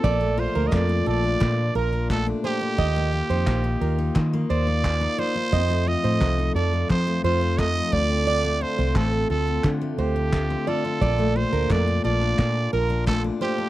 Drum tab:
CC |x-------|--------|--------|--------|
CP |--x-x-x-|--x-x-x-|--x-x-x-|--x-x-x-|
BD |o-o-o-o-|o-o-o-o-|o-o-o-oo|--o-o-o-|

CC |--------|
CP |--x-x-x-|
BD |o-o-o-o-|